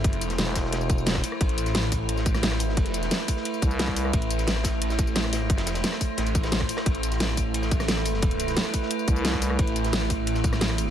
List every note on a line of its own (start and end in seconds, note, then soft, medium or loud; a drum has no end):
0.00 0.21 A1 medium
0.00 10.90 A3 medium
0.00 10.90 E4 medium
0.00 1.40 C5 medium
0.04 kick loud
0.04 closed hi-hat medium
0.04 ride medium
0.12 closed hi-hat soft
0.12 ride soft
0.21 0.37 F1 medium
0.21 closed hi-hat medium
0.21 ride medium
0.21 tambourine medium
0.29 snare soft
0.29 closed hi-hat soft
0.29 tambourine soft
0.38 1.22 E1 loud
0.38 snare loud
0.38 closed hi-hat medium
0.38 ride medium
0.47 cross-stick soft
0.55 kick medium
0.55 snare loud
0.55 open hi-hat medium
0.55 ride medium
0.55 tambourine medium
0.64 snare medium
0.72 snare loud
0.72 closed hi-hat medium
0.72 ride medium
0.81 tambourine soft
0.90 kick loud
0.90 closed hi-hat medium
0.90 ride medium
0.90 tambourine medium
0.98 tambourine soft
1.06 snare loud
1.06 closed hi-hat medium
1.06 ride medium
1.11 snare medium
1.11 ride medium
1.15 kick medium
1.15 cross-stick soft
1.15 snare loud
1.15 ride medium
1.23 open hi-hat medium
1.23 ride medium
1.23 tambourine medium
1.32 cross-stick medium
1.41 1.73 A1 loud
1.41 4.12 B4 loud
1.41 kick loud
1.41 closed hi-hat loud
1.41 ride medium
1.49 closed hi-hat soft
1.58 closed hi-hat medium
1.58 ride medium
1.58 tambourine medium
1.66 snare soft
1.66 closed hi-hat soft
1.66 tambourine soft
1.75 2.94 A1 medium
1.75 snare loud
1.75 closed hi-hat loud
1.75 ride medium
1.83 cross-stick soft
1.92 kick medium
1.92 open hi-hat medium
1.92 ride medium
1.92 tambourine medium
2.09 closed hi-hat medium
2.09 ride medium
2.17 snare medium
2.17 tambourine soft
2.26 kick loud
2.26 closed hi-hat medium
2.26 ride medium
2.26 tambourine medium
2.34 cross-stick medium
2.34 snare soft
2.34 tambourine soft
2.43 snare loud
2.43 closed hi-hat medium
2.43 ride loud
2.52 cross-stick soft
2.52 snare soft
2.59 open hi-hat medium
2.59 ride medium
2.59 tambourine medium
2.69 snare soft
2.77 kick loud
2.77 closed hi-hat loud
2.77 ride medium
2.86 closed hi-hat soft
2.86 ride soft
2.94 3.10 F1 medium
2.94 closed hi-hat medium
2.94 ride medium
2.94 tambourine medium
3.03 snare soft
3.03 closed hi-hat soft
3.03 tambourine soft
3.11 snare loud
3.11 closed hi-hat loud
3.11 ride medium
3.20 cross-stick soft
3.28 kick medium
3.28 open hi-hat medium
3.28 ride medium
3.28 tambourine medium
3.36 snare soft
3.45 closed hi-hat medium
3.45 ride medium
3.54 tambourine soft
3.62 4.12 C2 medium
3.62 kick loud
3.62 closed hi-hat medium
3.62 ride medium
3.62 tambourine medium
3.71 tambourine soft
3.79 snare loud
3.79 closed hi-hat medium
3.79 ride loud
3.88 kick medium
3.88 cross-stick soft
3.88 snare medium
3.96 open hi-hat medium
3.96 ride medium
3.96 tambourine medium
4.05 cross-stick medium
4.13 4.46 A1 loud
4.13 6.85 C5 medium
4.13 kick loud
4.13 closed hi-hat loud
4.13 ride medium
4.22 closed hi-hat soft
4.30 closed hi-hat medium
4.30 ride medium
4.30 tambourine medium
4.38 snare soft
4.38 closed hi-hat soft
4.38 tambourine soft
4.47 5.67 A1 medium
4.47 snare loud
4.47 closed hi-hat loud
4.47 ride medium
4.56 cross-stick soft
4.64 kick medium
4.64 snare loud
4.64 open hi-hat medium
4.64 ride medium
4.64 tambourine medium
4.82 closed hi-hat loud
4.82 ride medium
4.90 snare medium
4.90 tambourine soft
4.99 kick loud
4.99 closed hi-hat medium
4.99 ride medium
4.99 tambourine medium
5.07 tambourine soft
5.15 snare loud
5.15 closed hi-hat loud
5.15 ride medium
5.24 cross-stick soft
5.24 snare soft
5.33 snare loud
5.33 open hi-hat medium
5.33 ride medium
5.33 tambourine medium
5.50 kick loud
5.50 closed hi-hat loud
5.50 ride medium
5.58 snare loud
5.58 closed hi-hat soft
5.58 ride medium
5.66 5.83 F1 medium
5.66 snare medium
5.66 closed hi-hat medium
5.66 ride medium
5.66 tambourine medium
5.74 snare loud
5.74 closed hi-hat soft
5.74 ride medium
5.74 tambourine soft
5.83 snare loud
5.83 closed hi-hat loud
5.83 ride medium
5.92 cross-stick soft
5.92 snare loud
5.92 ride medium
6.01 kick medium
6.01 open hi-hat medium
6.01 tambourine medium
6.17 6.68 A1 loud
6.17 snare loud
6.17 closed hi-hat loud
6.17 ride medium
6.26 snare soft
6.26 closed hi-hat soft
6.26 tambourine soft
6.35 kick loud
6.35 closed hi-hat medium
6.35 ride medium
6.35 tambourine medium
6.43 snare loud
6.43 ride medium
6.43 tambourine soft
6.52 snare loud
6.52 closed hi-hat medium
6.52 ride medium
6.61 kick medium
6.61 cross-stick soft
6.69 open hi-hat medium
6.69 ride medium
6.69 tambourine medium
6.77 cross-stick medium
6.77 snare loud
6.77 ride medium
6.86 7.19 A1 loud
6.86 9.58 B4 loud
6.86 kick loud
6.86 closed hi-hat loud
6.86 ride medium
6.95 closed hi-hat soft
7.03 closed hi-hat medium
7.03 ride medium
7.03 tambourine medium
7.12 snare soft
7.12 closed hi-hat soft
7.12 tambourine soft
7.20 8.55 A1 loud
7.20 snare loud
7.20 closed hi-hat loud
7.20 ride medium
7.29 cross-stick soft
7.37 kick medium
7.37 open hi-hat medium
7.37 ride medium
7.37 tambourine medium
7.54 closed hi-hat loud
7.54 ride loud
7.62 snare medium
7.62 tambourine soft
7.71 kick loud
7.71 closed hi-hat medium
7.71 ride medium
7.71 tambourine medium
7.80 cross-stick medium
7.80 snare soft
7.80 tambourine soft
7.88 snare loud
7.88 closed hi-hat medium
7.88 ride loud
7.97 cross-stick soft
7.97 snare soft
8.05 open hi-hat medium
8.05 ride medium
8.05 tambourine medium
8.14 snare soft
8.22 kick loud
8.22 closed hi-hat loud
8.22 ride medium
8.31 closed hi-hat soft
8.31 ride soft
8.40 closed hi-hat medium
8.40 ride medium
8.40 tambourine medium
8.47 snare soft
8.47 closed hi-hat soft
8.47 tambourine soft
8.57 snare loud
8.57 closed hi-hat loud
8.57 ride medium
8.65 cross-stick soft
8.73 kick medium
8.73 open hi-hat medium
8.73 ride medium
8.73 tambourine medium
8.82 snare medium
8.91 closed hi-hat loud
8.91 ride medium
8.99 tambourine soft
9.08 9.58 C2 loud
9.08 kick loud
9.08 closed hi-hat medium
9.08 ride medium
9.08 tambourine medium
9.16 tambourine soft
9.25 snare loud
9.25 closed hi-hat medium
9.25 ride medium
9.33 kick medium
9.33 cross-stick soft
9.33 snare soft
9.42 open hi-hat medium
9.42 ride medium
9.42 tambourine medium
9.50 cross-stick medium
9.59 9.92 A1 loud
9.59 10.90 G#4 medium
9.59 kick loud
9.59 closed hi-hat medium
9.59 ride medium
9.67 closed hi-hat soft
9.76 closed hi-hat medium
9.76 ride medium
9.76 tambourine medium
9.84 snare soft
9.84 closed hi-hat soft
9.84 tambourine soft
9.93 10.90 A1 medium
9.93 snare loud
9.93 closed hi-hat medium
9.93 ride medium
10.02 cross-stick soft
10.10 kick medium
10.10 open hi-hat medium
10.10 ride medium
10.10 tambourine medium
10.27 closed hi-hat medium
10.27 ride medium
10.34 snare medium
10.34 tambourine soft
10.44 kick loud
10.44 closed hi-hat medium
10.44 ride medium
10.44 tambourine medium
10.53 cross-stick medium
10.53 snare soft
10.53 tambourine soft
10.61 snare loud
10.61 closed hi-hat medium
10.61 ride medium
10.70 cross-stick soft
10.70 snare soft
10.78 open hi-hat medium
10.78 ride medium
10.78 tambourine medium
10.87 snare soft